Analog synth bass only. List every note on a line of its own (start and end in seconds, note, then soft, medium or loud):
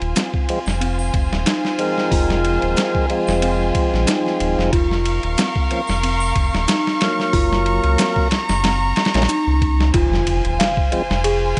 0.01 0.14 D#1 medium
0.66 1.11 F1 medium
1.14 1.29 F1 medium
1.32 1.45 D#1 medium
2.12 2.59 F1 medium
2.63 2.75 D#1 medium
3.28 3.72 F1 medium
3.94 4.06 A#1 loud
4.40 4.56 D#1 medium
4.58 4.71 F1 loud
4.73 5.20 F1 loud
5.24 5.36 D#1 medium
5.89 6.33 F1 medium
6.36 6.51 F1 medium
6.54 6.66 D#1 loud
7.34 7.80 F#1 loud
7.84 7.97 C#2 medium
8.49 8.93 F#1 medium
9.15 9.27 A#1 loud
9.47 9.91 C#2 loud
9.94 10.41 F1 loud
10.45 10.58 D#1 medium
11.10 11.54 F1 medium